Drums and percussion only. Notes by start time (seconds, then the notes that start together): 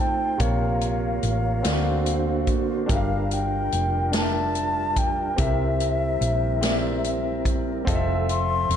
0.40 kick, closed hi-hat
0.81 closed hi-hat
1.23 closed hi-hat
1.64 snare, closed hi-hat
2.06 closed hi-hat
2.47 kick, closed hi-hat
2.89 kick, closed hi-hat
3.31 closed hi-hat
3.72 closed hi-hat
4.13 snare, closed hi-hat
4.55 closed hi-hat
4.96 kick, closed hi-hat
5.38 kick, closed hi-hat
5.80 closed hi-hat
6.22 closed hi-hat
6.63 snare, closed hi-hat
7.04 closed hi-hat
7.45 kick, closed hi-hat
7.87 kick, closed hi-hat
8.29 closed hi-hat
8.70 closed hi-hat